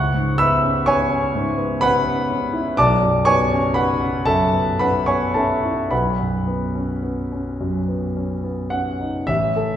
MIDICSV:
0, 0, Header, 1, 2, 480
1, 0, Start_track
1, 0, Tempo, 955414
1, 1393, Time_signature, 3, 2, 24, 8
1, 1394, Tempo, 983607
1, 1874, Tempo, 1041667
1, 2354, Tempo, 1121495
1, 4479, End_track
2, 0, Start_track
2, 0, Title_t, "Grand piano"
2, 0, Program_c, 0, 0
2, 0, Note_on_c, 0, 37, 47
2, 0, Note_on_c, 0, 78, 82
2, 0, Note_on_c, 0, 85, 68
2, 0, Note_on_c, 0, 90, 92
2, 47, Control_c, 0, 64, 127
2, 70, Note_on_c, 0, 44, 34
2, 176, Note_off_c, 0, 78, 0
2, 176, Note_off_c, 0, 85, 0
2, 192, Note_on_c, 0, 88, 93
2, 193, Note_off_c, 0, 90, 0
2, 196, Note_on_c, 0, 76, 68
2, 197, Note_on_c, 0, 59, 47
2, 197, Note_on_c, 0, 83, 67
2, 266, Note_off_c, 0, 44, 0
2, 312, Note_on_c, 0, 61, 37
2, 389, Note_off_c, 0, 59, 0
2, 420, Note_off_c, 0, 76, 0
2, 420, Note_off_c, 0, 83, 0
2, 432, Note_on_c, 0, 85, 86
2, 434, Note_off_c, 0, 88, 0
2, 439, Note_on_c, 0, 59, 42
2, 439, Note_on_c, 0, 73, 73
2, 439, Note_on_c, 0, 80, 76
2, 506, Note_off_c, 0, 61, 0
2, 550, Note_on_c, 0, 61, 44
2, 557, Note_off_c, 0, 59, 0
2, 678, Note_on_c, 0, 44, 44
2, 741, Note_off_c, 0, 61, 0
2, 789, Note_on_c, 0, 59, 46
2, 864, Note_off_c, 0, 44, 0
2, 890, Note_off_c, 0, 73, 0
2, 890, Note_off_c, 0, 80, 0
2, 907, Note_off_c, 0, 85, 0
2, 909, Note_on_c, 0, 83, 102
2, 915, Note_on_c, 0, 61, 45
2, 916, Note_on_c, 0, 71, 76
2, 916, Note_on_c, 0, 78, 78
2, 979, Note_off_c, 0, 59, 0
2, 1030, Note_on_c, 0, 59, 46
2, 1031, Note_off_c, 0, 61, 0
2, 1156, Note_on_c, 0, 61, 42
2, 1222, Note_off_c, 0, 59, 0
2, 1271, Note_on_c, 0, 64, 46
2, 1347, Note_off_c, 0, 61, 0
2, 1371, Note_off_c, 0, 37, 0
2, 1376, Note_off_c, 0, 71, 0
2, 1377, Note_off_c, 0, 78, 0
2, 1393, Note_off_c, 0, 83, 0
2, 1393, Note_on_c, 0, 86, 89
2, 1394, Note_off_c, 0, 64, 0
2, 1398, Note_on_c, 0, 35, 55
2, 1398, Note_on_c, 0, 81, 73
2, 1399, Control_c, 0, 64, 0
2, 1399, Note_on_c, 0, 74, 75
2, 1469, Control_c, 0, 64, 127
2, 1516, Note_on_c, 0, 42, 34
2, 1618, Note_off_c, 0, 81, 0
2, 1619, Note_off_c, 0, 74, 0
2, 1627, Note_on_c, 0, 85, 95
2, 1632, Note_off_c, 0, 86, 0
2, 1632, Note_on_c, 0, 73, 72
2, 1633, Note_on_c, 0, 59, 48
2, 1633, Note_on_c, 0, 80, 75
2, 1706, Note_off_c, 0, 42, 0
2, 1756, Note_on_c, 0, 61, 35
2, 1825, Note_off_c, 0, 59, 0
2, 1856, Note_off_c, 0, 73, 0
2, 1857, Note_off_c, 0, 80, 0
2, 1866, Note_on_c, 0, 83, 85
2, 1871, Note_off_c, 0, 85, 0
2, 1873, Note_on_c, 0, 59, 39
2, 1873, Note_on_c, 0, 71, 60
2, 1873, Note_on_c, 0, 78, 66
2, 1944, Note_off_c, 0, 61, 0
2, 1989, Note_off_c, 0, 59, 0
2, 1989, Note_on_c, 0, 61, 38
2, 2091, Note_off_c, 0, 71, 0
2, 2091, Note_off_c, 0, 78, 0
2, 2103, Note_on_c, 0, 81, 86
2, 2104, Note_off_c, 0, 83, 0
2, 2107, Note_on_c, 0, 42, 39
2, 2107, Note_on_c, 0, 69, 61
2, 2108, Note_on_c, 0, 76, 64
2, 2180, Note_off_c, 0, 61, 0
2, 2230, Note_on_c, 0, 59, 37
2, 2303, Note_off_c, 0, 42, 0
2, 2336, Note_off_c, 0, 69, 0
2, 2336, Note_off_c, 0, 76, 0
2, 2351, Note_off_c, 0, 81, 0
2, 2351, Note_on_c, 0, 83, 83
2, 2356, Note_on_c, 0, 61, 36
2, 2356, Note_on_c, 0, 71, 65
2, 2357, Note_on_c, 0, 78, 57
2, 2424, Note_off_c, 0, 59, 0
2, 2464, Note_off_c, 0, 71, 0
2, 2465, Note_off_c, 0, 78, 0
2, 2466, Note_on_c, 0, 85, 72
2, 2470, Note_off_c, 0, 83, 0
2, 2471, Note_on_c, 0, 73, 58
2, 2472, Note_off_c, 0, 61, 0
2, 2472, Note_on_c, 0, 59, 39
2, 2472, Note_on_c, 0, 80, 58
2, 2582, Note_off_c, 0, 73, 0
2, 2583, Note_off_c, 0, 80, 0
2, 2585, Note_on_c, 0, 81, 59
2, 2588, Note_off_c, 0, 85, 0
2, 2589, Note_on_c, 0, 61, 37
2, 2590, Note_on_c, 0, 69, 50
2, 2590, Note_on_c, 0, 76, 47
2, 2663, Note_off_c, 0, 59, 0
2, 2714, Note_on_c, 0, 64, 35
2, 2783, Note_off_c, 0, 61, 0
2, 2815, Note_off_c, 0, 69, 0
2, 2815, Note_off_c, 0, 76, 0
2, 2817, Note_off_c, 0, 35, 0
2, 2827, Note_on_c, 0, 83, 67
2, 2829, Note_off_c, 0, 81, 0
2, 2830, Note_on_c, 0, 78, 47
2, 2831, Note_on_c, 0, 71, 52
2, 2833, Note_off_c, 0, 64, 0
2, 2833, Note_on_c, 0, 35, 40
2, 2841, Control_c, 0, 64, 0
2, 2918, Control_c, 0, 64, 127
2, 2952, Note_on_c, 0, 42, 29
2, 3069, Note_on_c, 0, 59, 37
2, 3146, Note_off_c, 0, 42, 0
2, 3190, Note_on_c, 0, 61, 30
2, 3266, Note_off_c, 0, 59, 0
2, 3308, Note_on_c, 0, 59, 29
2, 3387, Note_off_c, 0, 61, 0
2, 3433, Note_on_c, 0, 61, 31
2, 3434, Note_off_c, 0, 59, 0
2, 3556, Note_on_c, 0, 42, 35
2, 3629, Note_off_c, 0, 61, 0
2, 3674, Note_on_c, 0, 59, 30
2, 3749, Note_off_c, 0, 42, 0
2, 3795, Note_on_c, 0, 61, 31
2, 3866, Note_off_c, 0, 59, 0
2, 3911, Note_on_c, 0, 59, 33
2, 3915, Note_off_c, 0, 61, 0
2, 4017, Note_off_c, 0, 78, 0
2, 4018, Note_off_c, 0, 71, 0
2, 4024, Note_on_c, 0, 78, 66
2, 4030, Note_on_c, 0, 61, 31
2, 4033, Note_off_c, 0, 83, 0
2, 4104, Note_off_c, 0, 59, 0
2, 4150, Note_on_c, 0, 63, 33
2, 4224, Note_off_c, 0, 61, 0
2, 4258, Note_off_c, 0, 35, 0
2, 4266, Note_on_c, 0, 76, 85
2, 4269, Note_off_c, 0, 78, 0
2, 4271, Note_on_c, 0, 33, 48
2, 4273, Note_off_c, 0, 63, 0
2, 4281, Control_c, 0, 64, 0
2, 4366, Control_c, 0, 64, 127
2, 4393, Note_on_c, 0, 69, 44
2, 4479, Note_off_c, 0, 33, 0
2, 4479, Note_off_c, 0, 69, 0
2, 4479, Note_off_c, 0, 76, 0
2, 4479, End_track
0, 0, End_of_file